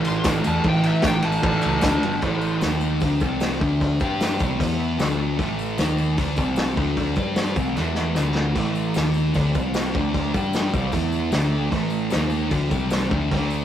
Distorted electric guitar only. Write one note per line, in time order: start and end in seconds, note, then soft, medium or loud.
0.00 0.24 A2 loud
0.00 0.25 E3 loud
0.00 0.26 A3 loud
0.25 0.43 A2 medium
0.25 0.43 E3 loud
0.25 0.44 A3 loud
0.44 0.63 A2 loud
0.44 0.63 E3 loud
0.44 0.64 A3 loud
0.64 1.02 A2 medium
0.64 1.03 E3 loud
0.64 1.04 A3 medium
1.03 1.21 A2 medium
1.03 1.22 E3 medium
1.03 1.23 A3 medium
1.22 1.41 A2 loud
1.22 1.42 E3 loud
1.22 1.43 A3 loud
1.42 1.81 A2 loud
1.42 1.82 E3 loud
1.42 1.82 A3 loud
1.82 2.01 D3 loud
1.82 2.02 A3 loud
1.82 2.03 D4 loud
2.02 2.22 G2 loud
2.02 2.22 D3 loud
2.02 2.23 G3 loud
2.22 2.61 A2 medium
2.22 2.62 E3 loud
2.22 2.63 A3 medium
2.61 3.01 D#3 medium
2.61 3.02 A#3 loud
2.61 3.02 D#4 loud
3.03 3.21 D3 medium
3.03 3.22 A3 loud
3.03 3.23 D4 loud
3.22 3.60 C3 medium
3.22 3.61 G3 medium
3.22 3.61 C4 loud
3.60 4.00 D3 loud
3.60 4.00 A3 loud
3.60 4.00 D4 loud
4.00 4.40 G3 medium
4.00 4.40 D4 medium
4.00 4.41 G4 loud
4.41 4.58 C3 medium
4.41 4.59 G3 medium
4.41 4.60 C4 loud
4.59 4.98 E3 medium
4.59 4.99 B3 loud
4.59 5.00 E4 loud
4.99 5.37 D3 loud
4.99 5.39 A3 loud
4.99 5.40 D4 medium
5.37 5.78 A2 medium
5.37 5.79 E3 loud
5.37 5.79 A3 medium
5.78 6.17 D#3 medium
5.78 6.18 A#3 medium
5.78 6.19 D#4 loud
6.18 6.36 D3 medium
6.18 6.37 A3 loud
6.18 6.38 D4 loud
6.37 6.75 C3 loud
6.37 6.76 G3 loud
6.37 6.77 C4 medium
6.76 7.16 D3 medium
6.76 7.16 A3 loud
6.76 7.16 D4 loud
7.16 7.56 G3 medium
7.16 7.56 D4 medium
7.16 7.57 G4 loud
7.56 7.75 C3 medium
7.56 7.76 G3 medium
7.56 7.77 C4 loud
7.76 8.16 E3 loud
7.76 8.17 B3 medium
7.76 8.18 E4 loud
8.16 8.55 D3 loud
8.16 8.56 A3 loud
8.16 8.56 D4 loud
8.56 8.95 A2 medium
8.56 8.95 E3 medium
8.56 8.96 A3 loud
8.95 9.34 D#3 medium
8.95 9.34 A#3 medium
8.95 9.35 D#4 medium
9.34 9.54 D3 loud
9.34 9.54 A3 loud
9.34 9.55 D4 loud
9.55 9.93 C3 medium
9.55 9.94 G3 loud
9.55 9.95 C4 loud
9.93 10.33 D3 medium
9.93 10.33 A3 medium
9.93 10.34 D4 loud
10.34 10.73 G3 medium
10.34 10.74 D4 loud
10.34 10.74 G4 loud
10.73 10.92 C3 loud
10.73 10.93 G3 medium
10.73 10.94 C4 loud
10.93 11.31 E3 medium
10.93 11.32 B3 loud
10.93 11.33 E4 loud
11.31 11.70 D3 loud
11.31 11.71 A3 loud
11.31 11.72 D4 loud
11.71 12.11 A2 medium
11.71 12.12 E3 medium
11.71 12.12 A3 medium
12.11 12.50 D#3 medium
12.11 12.51 A#3 medium
12.11 12.52 D#4 medium
12.50 12.70 D3 medium
12.50 12.71 A3 loud
12.50 12.72 D4 loud
12.70 13.09 C3 medium
12.70 13.11 G3 medium
12.70 13.11 C4 medium
13.09 13.29 D3 medium
13.09 13.30 A3 medium
13.09 13.31 D4 loud
13.30 13.65 D3 medium
13.30 13.65 A3 medium
13.30 13.65 D4 loud